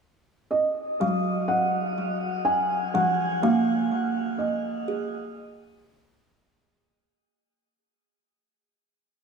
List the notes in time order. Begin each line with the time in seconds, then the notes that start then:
0.51 D#5
1.00 F#3 F5
1.48 F#5
2.45 G#5
2.94 F3 F#5
3.42 A#3 F5
4.38 D#5
4.88 G#4